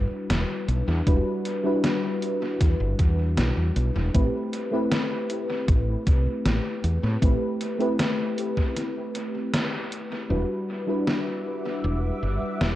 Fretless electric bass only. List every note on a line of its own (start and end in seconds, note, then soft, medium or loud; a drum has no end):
0.00 0.10 G1 medium
0.11 muted fretless electric bass stroke soft
0.30 0.43 E1 medium
0.68 0.81 B1 medium
0.88 1.01 E2 loud
1.07 1.20 E1 loud
2.61 2.74 E2 medium
2.80 2.93 G1 medium
2.99 3.39 E2 medium
3.38 3.51 B1 medium
3.57 3.70 E2 medium
3.76 3.89 B1 loud
3.96 4.08 E1 medium
4.14 4.28 A1 loud
5.68 5.94 A1 loud
6.07 6.26 C2 medium
6.27 muted fretless electric bass stroke soft
6.45 6.59 A1 medium
6.84 6.97 E2 medium
7.03 7.16 A2 medium
7.22 7.35 A1 loud
10.30 10.43 E1 medium
11.84 12.10 E1 medium
12.23 12.42 G1 medium
12.42 muted fretless electric bass stroke soft
12.61 12.74 E1 medium